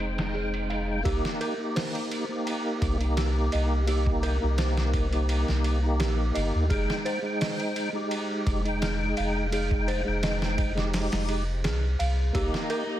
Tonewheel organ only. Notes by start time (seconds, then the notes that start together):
Already playing: G#3 D#4 G5
1.03 A#3 D#4 G4
1.57 A#3 D#4 G4
2.29 A#3 D#4 G4
2.98 A#3 D#4
3.04 G4
3.86 A#3 D#4 G4
4.40 A#3 D#4 G4
5.11 A#3 D#4 G4
5.79 A#3 D#4
5.86 G4
6.68 G#3 D#4 G5
7.22 G#3 D#4 G5
7.92 G#3 D#4 G4
8.61 G#3 D#4
8.68 G5
9.51 G#3 D#4 G5
10.04 G#3 D#4 G5
10.75 G#3 D#4 G4
12.33 A#3 D#4 G4
12.87 A#3 D#4 G4